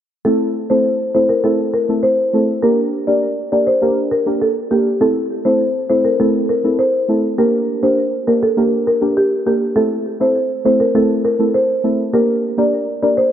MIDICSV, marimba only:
0, 0, Header, 1, 2, 480
1, 0, Start_track
1, 0, Tempo, 594059
1, 206, Time_signature, 4, 2, 24, 8
1, 10764, End_track
2, 0, Start_track
2, 0, Title_t, "Marimba"
2, 0, Program_c, 0, 12
2, 201, Note_on_c, 0, 69, 91
2, 360, Note_off_c, 0, 69, 0
2, 565, Note_on_c, 0, 72, 72
2, 644, Note_off_c, 0, 72, 0
2, 925, Note_on_c, 0, 72, 80
2, 1004, Note_off_c, 0, 72, 0
2, 1044, Note_on_c, 0, 70, 74
2, 1123, Note_off_c, 0, 70, 0
2, 1162, Note_on_c, 0, 69, 82
2, 1242, Note_off_c, 0, 69, 0
2, 1402, Note_on_c, 0, 70, 73
2, 1482, Note_off_c, 0, 70, 0
2, 1639, Note_on_c, 0, 72, 77
2, 1981, Note_off_c, 0, 72, 0
2, 2121, Note_on_c, 0, 70, 79
2, 2280, Note_off_c, 0, 70, 0
2, 2483, Note_on_c, 0, 74, 68
2, 2562, Note_off_c, 0, 74, 0
2, 2845, Note_on_c, 0, 74, 71
2, 2924, Note_off_c, 0, 74, 0
2, 2964, Note_on_c, 0, 72, 71
2, 3043, Note_off_c, 0, 72, 0
2, 3324, Note_on_c, 0, 70, 81
2, 3403, Note_off_c, 0, 70, 0
2, 3568, Note_on_c, 0, 69, 77
2, 3646, Note_off_c, 0, 69, 0
2, 3806, Note_on_c, 0, 67, 74
2, 3884, Note_off_c, 0, 67, 0
2, 4048, Note_on_c, 0, 69, 93
2, 4205, Note_off_c, 0, 69, 0
2, 4404, Note_on_c, 0, 72, 72
2, 4483, Note_off_c, 0, 72, 0
2, 4765, Note_on_c, 0, 72, 77
2, 4844, Note_off_c, 0, 72, 0
2, 4886, Note_on_c, 0, 70, 74
2, 4964, Note_off_c, 0, 70, 0
2, 5008, Note_on_c, 0, 69, 84
2, 5086, Note_off_c, 0, 69, 0
2, 5247, Note_on_c, 0, 70, 76
2, 5325, Note_off_c, 0, 70, 0
2, 5485, Note_on_c, 0, 72, 75
2, 5824, Note_off_c, 0, 72, 0
2, 5966, Note_on_c, 0, 70, 85
2, 6123, Note_off_c, 0, 70, 0
2, 6326, Note_on_c, 0, 72, 71
2, 6405, Note_off_c, 0, 72, 0
2, 6685, Note_on_c, 0, 70, 72
2, 6764, Note_off_c, 0, 70, 0
2, 6809, Note_on_c, 0, 69, 74
2, 6887, Note_off_c, 0, 69, 0
2, 7169, Note_on_c, 0, 70, 77
2, 7246, Note_off_c, 0, 70, 0
2, 7410, Note_on_c, 0, 67, 74
2, 7487, Note_off_c, 0, 67, 0
2, 7648, Note_on_c, 0, 67, 70
2, 7726, Note_off_c, 0, 67, 0
2, 7885, Note_on_c, 0, 69, 91
2, 8042, Note_off_c, 0, 69, 0
2, 8250, Note_on_c, 0, 72, 72
2, 8327, Note_off_c, 0, 72, 0
2, 8609, Note_on_c, 0, 72, 77
2, 8687, Note_off_c, 0, 72, 0
2, 8727, Note_on_c, 0, 70, 74
2, 8805, Note_off_c, 0, 70, 0
2, 8849, Note_on_c, 0, 69, 85
2, 8926, Note_off_c, 0, 69, 0
2, 9088, Note_on_c, 0, 70, 80
2, 9166, Note_off_c, 0, 70, 0
2, 9328, Note_on_c, 0, 72, 75
2, 9665, Note_off_c, 0, 72, 0
2, 9806, Note_on_c, 0, 70, 82
2, 9963, Note_off_c, 0, 70, 0
2, 10167, Note_on_c, 0, 74, 70
2, 10246, Note_off_c, 0, 74, 0
2, 10525, Note_on_c, 0, 74, 72
2, 10604, Note_off_c, 0, 74, 0
2, 10644, Note_on_c, 0, 72, 77
2, 10723, Note_off_c, 0, 72, 0
2, 10764, End_track
0, 0, End_of_file